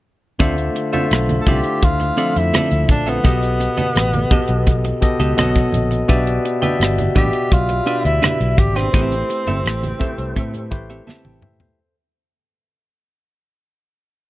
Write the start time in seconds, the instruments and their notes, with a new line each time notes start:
0.39 fingered electric bass D2, tine electric piano D3 A3 F4 C5 E5, clean electric guitar C4 F4 A4 D5, kick, closed hi-hat, muted conga
0.58 closed hi-hat
0.75 muted clean electric guitar stroke, closed hi-hat
0.92 tine electric piano D3 A3 F4 C5 E5, clean electric guitar C4 F4 A4 E5, closed hi-hat, high conga
1.11 fingered electric bass B1, muted clean electric guitar stroke, cross-stick, closed hi-hat, muted conga
1.29 closed hi-hat, muted conga, high conga
1.41 tenor saxophone A4
1.46 fingered electric bass C2, tine electric piano D3 A3 E4 C5 E5, clean electric guitar C4 F4 A4 D5, tenor saxophone G4, kick, closed hi-hat, low conga
1.53 tine electric piano F4
1.64 muted clean electric guitar stroke, closed hi-hat
1.82 fingered electric bass D2, tenor saxophone F4, muted clean electric guitar stroke, kick, closed hi-hat
2.00 muted clean electric guitar stroke, closed hi-hat, muted conga
2.17 tine electric piano D3 F3 A3 C5 E5, clean electric guitar C4 F4 A4 D5, closed hi-hat
2.36 fingered electric bass F2, tenor saxophone E4, muted clean electric guitar stroke, closed hi-hat
2.54 clean electric guitar C4 F4 A4 D5, cross-stick, closed hi-hat, muted conga, high conga
2.71 fingered electric bass D2, closed hi-hat, muted conga
2.89 fingered electric bass A#1, tenor saxophone D4, muted clean electric guitar stroke, kick, closed hi-hat, high conga, low conga
3.07 tenor saxophone B3, clean electric guitar C4 F4 A4 E5, closed hi-hat
3.24 fingered electric bass B1, tine electric piano B2 B3 G4 A4 D#5, clean electric guitar B3 G4 A4 D#5, kick, closed hi-hat, muted conga
3.43 closed hi-hat
3.60 muted clean electric guitar stroke, closed hi-hat
3.77 clean electric guitar B3 G4 A4 D#5, muted fingered electric bass stroke, closed hi-hat, high conga
3.95 fingered electric bass A1, muted clean electric guitar stroke, cross-stick, closed hi-hat, muted conga
4.13 closed hi-hat, muted conga, high conga
4.30 tine electric piano B2 B3 G4 A4 D#5, clean electric guitar B3 G4 A4 D#5, kick, closed hi-hat, low conga
4.48 fingered electric bass B1, muted clean electric guitar stroke, closed hi-hat
4.66 muted clean electric guitar stroke, kick, closed hi-hat, muted conga
4.85 muted clean electric guitar stroke, closed hi-hat, muted conga
5.01 tine electric piano B2 B3 G4 A4 D#5, muted fingered electric bass stroke, kick, closed hi-hat
5.20 fingered electric bass C#2, clean electric guitar B3 G4 A4 D#5, closed hi-hat
5.37 fingered electric bass B1, tine electric piano B2 B3 A4 C#5 D#5, clean electric guitar B3 F#4 A4 D#5, cross-stick, closed hi-hat, muted conga, high conga
5.55 kick, cross-stick, closed hi-hat, muted conga
5.72 fingered electric bass A#1, muted clean electric guitar stroke, closed hi-hat, high conga, low conga
5.91 muted clean electric guitar stroke, closed hi-hat
6.08 fingered electric bass B1, tine electric piano B2 B3 G4 D5 E5, clean electric guitar D4 G4 B4 E5, kick, closed hi-hat, muted conga
6.27 closed hi-hat, muted conga
6.44 muted clean electric guitar stroke, closed hi-hat
6.61 tine electric piano B2 B3 G4 D5 E5, clean electric guitar D4 G4 B4 G5, closed hi-hat, high conga
6.80 fingered electric bass G1, muted clean electric guitar stroke, cross-stick, closed hi-hat
6.98 closed hi-hat, muted conga, high conga
7.15 fingered electric bass A1, tine electric piano B2 B3 G4 D5 E5, clean electric guitar D4 G4 B4 E5, tenor saxophone G4, kick, closed hi-hat, low conga
7.33 muted clean electric guitar stroke, closed hi-hat
7.51 fingered electric bass B1, tenor saxophone F4, muted clean electric guitar stroke, kick, closed hi-hat, muted conga
7.69 muted clean electric guitar stroke, closed hi-hat, muted conga
7.86 tine electric piano B2 B3 G4 D5 E5, clean electric guitar D4 G4 B4 E5, closed hi-hat
8.04 fingered electric bass D2, tenor saxophone E4, muted clean electric guitar stroke, closed hi-hat
8.22 clean electric guitar D4 G4 B4 E5, cross-stick, closed hi-hat, muted conga, high conga
8.41 fingered electric bass B1, closed hi-hat
8.58 fingered electric bass G#1, tenor saxophone G4, muted clean electric guitar stroke, kick, closed hi-hat, high conga, low conga
8.76 tenor saxophone C4, clean electric guitar D4 G4 B4 G5, cross-stick, closed hi-hat
8.93 fingered electric bass A1, tine electric piano A3 E4 G4 B4 C5, clean electric guitar C4 G4 A4 E5, kick, closed hi-hat, muted conga
9.11 closed hi-hat, muted conga
9.30 muted clean electric guitar stroke, closed hi-hat
9.47 fingered electric bass G1, clean electric guitar C4 G4 A4 E5, closed hi-hat, high conga
9.64 fingered electric bass A1, muted clean electric guitar stroke, cross-stick, closed hi-hat, muted conga
9.83 closed hi-hat, muted conga, high conga
9.99 tine electric piano A3 E4 G4 B4 C5, clean electric guitar C4 G4 A4 E5, kick, closed hi-hat, low conga
10.18 fingered electric bass C2, muted clean electric guitar stroke, closed hi-hat
10.36 fingered electric bass A2, clean electric guitar C4 G4 A4 E5, kick, closed hi-hat, muted conga
10.54 closed hi-hat, muted conga
10.71 fingered electric bass A1, tine electric piano A3 E4 G4 B4 C5, muted clean electric guitar stroke, kick, closed hi-hat
10.90 clean electric guitar C4 G4 A4 E5, closed hi-hat
11.07 clean electric guitar C4 G4 A4 E5, tine electric piano A5, muted fingered electric bass stroke, snare, high conga
11.24 fingered electric bass A1, tine electric piano E5 G5, high tom, muted conga
11.41 fingered electric bass A2, tine electric piano C5 E5, muted clean electric guitar stroke, mid tom, high conga, low conga
11.60 tine electric piano A4 C5, muted clean electric guitar stroke, floor tom